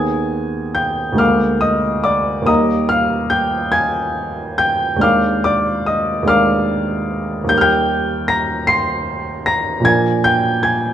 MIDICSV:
0, 0, Header, 1, 2, 480
1, 0, Start_track
1, 0, Key_signature, -3, "major"
1, 0, Tempo, 894188
1, 875, Tempo, 851064
1, 1357, Time_signature, 6, 3, 24, 8
1, 3275, Tempo, 816327
1, 4235, Tempo, 786370
1, 6321, End_track
2, 0, Start_track
2, 0, Title_t, "Upright piano"
2, 0, Program_c, 0, 0
2, 0, Note_on_c, 0, 39, 55
2, 0, Note_on_c, 0, 51, 49
2, 0, Note_on_c, 0, 59, 46
2, 0, Note_on_c, 0, 68, 44
2, 0, Note_on_c, 0, 80, 69
2, 0, Note_on_c, 0, 87, 72
2, 0, Note_on_c, 0, 92, 90
2, 22, Control_c, 0, 64, 127
2, 383, Note_off_c, 0, 80, 0
2, 383, Note_off_c, 0, 87, 0
2, 400, Note_on_c, 0, 91, 81
2, 401, Note_off_c, 0, 92, 0
2, 405, Note_on_c, 0, 79, 62
2, 600, Note_off_c, 0, 39, 0
2, 604, Note_on_c, 0, 38, 57
2, 607, Note_off_c, 0, 51, 0
2, 610, Note_off_c, 0, 59, 0
2, 616, Note_off_c, 0, 68, 0
2, 616, Note_on_c, 0, 56, 47
2, 625, Note_off_c, 0, 79, 0
2, 627, Note_on_c, 0, 58, 48
2, 635, Note_on_c, 0, 70, 45
2, 635, Note_on_c, 0, 89, 90
2, 639, Note_off_c, 0, 91, 0
2, 640, Note_on_c, 0, 77, 68
2, 640, Note_on_c, 0, 86, 69
2, 651, Control_c, 0, 64, 0
2, 739, Control_c, 0, 64, 127
2, 856, Note_off_c, 0, 86, 0
2, 857, Note_off_c, 0, 77, 0
2, 863, Note_on_c, 0, 87, 90
2, 867, Note_on_c, 0, 75, 70
2, 870, Note_off_c, 0, 89, 0
2, 1095, Note_off_c, 0, 75, 0
2, 1104, Note_on_c, 0, 86, 89
2, 1110, Note_off_c, 0, 87, 0
2, 1111, Note_on_c, 0, 74, 70
2, 1315, Note_off_c, 0, 38, 0
2, 1320, Note_on_c, 0, 39, 54
2, 1321, Note_off_c, 0, 56, 0
2, 1327, Note_off_c, 0, 58, 0
2, 1329, Note_on_c, 0, 55, 48
2, 1332, Note_off_c, 0, 70, 0
2, 1338, Note_off_c, 0, 74, 0
2, 1340, Note_on_c, 0, 58, 48
2, 1346, Note_on_c, 0, 87, 98
2, 1351, Note_off_c, 0, 86, 0
2, 1351, Note_on_c, 0, 70, 48
2, 1356, Note_on_c, 0, 75, 68
2, 1357, Note_on_c, 0, 82, 66
2, 1366, Control_c, 0, 64, 0
2, 1467, Control_c, 0, 64, 127
2, 1576, Note_off_c, 0, 75, 0
2, 1577, Note_off_c, 0, 82, 0
2, 1585, Note_on_c, 0, 89, 99
2, 1588, Note_off_c, 0, 87, 0
2, 1593, Note_on_c, 0, 77, 73
2, 1810, Note_off_c, 0, 77, 0
2, 1816, Note_on_c, 0, 91, 87
2, 1821, Note_on_c, 0, 79, 69
2, 1822, Note_off_c, 0, 89, 0
2, 2044, Note_off_c, 0, 79, 0
2, 2052, Note_on_c, 0, 92, 97
2, 2058, Note_off_c, 0, 91, 0
2, 2058, Note_on_c, 0, 80, 77
2, 2525, Note_off_c, 0, 80, 0
2, 2539, Note_on_c, 0, 91, 98
2, 2545, Note_off_c, 0, 92, 0
2, 2545, Note_on_c, 0, 79, 75
2, 2745, Note_off_c, 0, 39, 0
2, 2754, Note_on_c, 0, 39, 59
2, 2759, Note_off_c, 0, 55, 0
2, 2764, Note_off_c, 0, 58, 0
2, 2766, Note_on_c, 0, 56, 49
2, 2770, Note_off_c, 0, 70, 0
2, 2775, Note_on_c, 0, 62, 49
2, 2776, Note_off_c, 0, 79, 0
2, 2784, Note_on_c, 0, 89, 92
2, 2787, Note_on_c, 0, 70, 47
2, 2790, Note_off_c, 0, 91, 0
2, 2792, Note_on_c, 0, 77, 74
2, 2793, Note_on_c, 0, 86, 72
2, 2804, Control_c, 0, 64, 0
2, 2884, Control_c, 0, 64, 127
2, 3017, Note_off_c, 0, 86, 0
2, 3018, Note_off_c, 0, 77, 0
2, 3025, Note_on_c, 0, 86, 96
2, 3031, Note_off_c, 0, 89, 0
2, 3035, Note_on_c, 0, 74, 73
2, 3255, Note_off_c, 0, 74, 0
2, 3263, Note_on_c, 0, 87, 82
2, 3267, Note_off_c, 0, 86, 0
2, 3271, Note_on_c, 0, 75, 69
2, 3466, Note_off_c, 0, 39, 0
2, 3475, Note_on_c, 0, 39, 61
2, 3477, Note_off_c, 0, 56, 0
2, 3482, Note_off_c, 0, 62, 0
2, 3486, Note_on_c, 0, 56, 51
2, 3489, Note_off_c, 0, 70, 0
2, 3497, Note_on_c, 0, 62, 55
2, 3498, Note_off_c, 0, 75, 0
2, 3505, Note_on_c, 0, 89, 99
2, 3507, Note_on_c, 0, 70, 53
2, 3509, Note_on_c, 0, 77, 78
2, 3511, Note_off_c, 0, 87, 0
2, 3513, Note_on_c, 0, 86, 78
2, 4180, Note_off_c, 0, 39, 0
2, 4189, Note_on_c, 0, 39, 61
2, 4196, Note_off_c, 0, 56, 0
2, 4201, Note_on_c, 0, 55, 49
2, 4202, Note_off_c, 0, 62, 0
2, 4206, Note_off_c, 0, 77, 0
2, 4207, Note_off_c, 0, 70, 0
2, 4208, Note_off_c, 0, 86, 0
2, 4212, Note_on_c, 0, 63, 52
2, 4219, Note_on_c, 0, 91, 102
2, 4221, Note_on_c, 0, 70, 51
2, 4228, Note_off_c, 0, 89, 0
2, 4242, Control_c, 0, 64, 0
2, 4264, Note_off_c, 0, 91, 0
2, 4271, Note_on_c, 0, 89, 85
2, 4293, Note_on_c, 0, 91, 107
2, 4300, Note_on_c, 0, 79, 74
2, 4309, Note_off_c, 0, 89, 0
2, 4329, Control_c, 0, 64, 127
2, 4688, Note_off_c, 0, 79, 0
2, 4701, Note_on_c, 0, 94, 99
2, 4707, Note_on_c, 0, 82, 75
2, 4708, Note_off_c, 0, 91, 0
2, 4936, Note_off_c, 0, 82, 0
2, 4939, Note_on_c, 0, 96, 104
2, 4947, Note_on_c, 0, 84, 78
2, 4950, Note_off_c, 0, 94, 0
2, 5404, Note_off_c, 0, 84, 0
2, 5420, Note_on_c, 0, 94, 94
2, 5424, Note_off_c, 0, 96, 0
2, 5428, Note_on_c, 0, 82, 75
2, 5623, Note_off_c, 0, 39, 0
2, 5627, Note_on_c, 0, 46, 62
2, 5629, Note_off_c, 0, 55, 0
2, 5634, Note_off_c, 0, 63, 0
2, 5638, Note_on_c, 0, 53, 50
2, 5639, Note_off_c, 0, 70, 0
2, 5650, Note_off_c, 0, 82, 0
2, 5652, Note_on_c, 0, 62, 48
2, 5658, Note_on_c, 0, 92, 104
2, 5662, Note_on_c, 0, 70, 50
2, 5663, Note_off_c, 0, 94, 0
2, 5667, Note_on_c, 0, 80, 71
2, 5679, Control_c, 0, 64, 0
2, 5771, Control_c, 0, 64, 127
2, 5887, Note_off_c, 0, 80, 0
2, 5898, Note_on_c, 0, 91, 102
2, 5899, Note_off_c, 0, 92, 0
2, 5904, Note_on_c, 0, 79, 77
2, 6128, Note_off_c, 0, 79, 0
2, 6134, Note_on_c, 0, 92, 90
2, 6138, Note_on_c, 0, 80, 63
2, 6142, Note_off_c, 0, 91, 0
2, 6321, Note_off_c, 0, 46, 0
2, 6321, Note_off_c, 0, 53, 0
2, 6321, Note_off_c, 0, 62, 0
2, 6321, Note_off_c, 0, 70, 0
2, 6321, Note_off_c, 0, 80, 0
2, 6321, Note_off_c, 0, 92, 0
2, 6321, End_track
0, 0, End_of_file